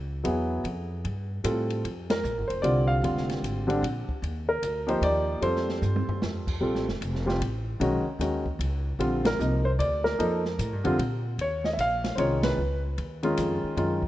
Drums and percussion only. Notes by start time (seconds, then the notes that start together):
0.25 ride
0.65 ride
1.05 ride
1.44 hi-hat pedal, ride
1.70 ride
1.85 ride
2.10 snare, ride
2.24 hi-hat pedal
2.50 ride
2.64 ride
3.04 ride
3.17 snare
3.29 snare, ride
3.44 hi-hat pedal, ride
3.70 ride
3.84 ride
4.09 kick
4.24 ride
4.63 hi-hat pedal, ride
4.88 ride
5.03 ride
5.42 ride
5.56 snare
5.69 snare
5.82 hi-hat pedal, high tom
5.96 high tom
6.09 floor tom
6.22 snare
6.47 kick, crash
6.75 snare
6.88 snare
7.02 hi-hat pedal, ride
7.15 snare
7.29 snare
7.42 ride
7.81 ride
8.21 hi-hat pedal, ride
8.46 kick
8.61 ride
9.00 ride
9.25 snare, ride
9.40 hi-hat pedal
9.80 ride
10.05 snare
10.20 ride
10.45 snare
10.59 hi-hat pedal, ride
10.85 ride
10.99 ride
11.39 ride
11.64 snare
11.79 hi-hat pedal, ride
12.04 snare, ride
12.18 ride
12.43 snare, ride
12.98 ride
13.23 ride
13.37 hi-hat pedal, ride
13.77 ride
14.02 kick